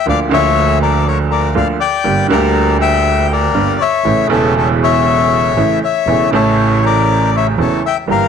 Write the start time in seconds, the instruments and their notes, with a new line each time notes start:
0.06 double bass D2, upright piano D2 D3 F3 A#3 F4, bandoneon D5 F5
0.29 upright piano D2 D3 F3 A#3 F4, double bass D2, bandoneon C#5
0.34 bandoneon E5
0.82 bandoneon A#4 D5
1.07 bandoneon A#4 C#5
1.31 bandoneon A#4 D5
1.55 upright piano D2 D3 F3 A#3 F4, double bass D2, bandoneon D5 F5
1.80 bandoneon D5 G5
2.04 upright piano G1 G2 D3 G3 A#3 G4, double bass G1
2.28 double bass D2, upright piano D2 D3 G3 A#3, bandoneon A#4
2.32 upright piano G4, bandoneon D5
2.81 bandoneon E5 G5
3.32 bandoneon A#4 D5
3.54 double bass G1, upright piano G1 G2 D3 G3 A#3 G4
3.81 bandoneon C#5 E5
4.04 double bass A1, upright piano A1 A2 C#3 E3 A3 E4
4.27 double bass E1, upright piano E1 E2 C#3 E3 A3
4.32 upright piano E4, bandoneon A4 C#5
4.57 bandoneon A4 C#5
4.83 bandoneon C#5 E5
5.56 double bass A1, upright piano A1 A2 C#3 E3 A3 E4
5.84 bandoneon C#5 E5
6.07 double bass E1, upright piano E1 E2 C#3 E3 A3 E4
6.31 double bass A1, upright piano A1 A2 C#3 E3 E4, bandoneon A4
6.35 bandoneon C#5
6.85 bandoneon A#4 D5
7.36 bandoneon C#5 E5
7.58 double bass E1, upright piano E1 E2 C#3 E3 A3 E4, bandoneon A4 C#5
7.86 bandoneon E5 G5
8.07 double bass G1, upright piano G1 G2 E3 G3 A#3 G4, bandoneon A#4
8.11 bandoneon F5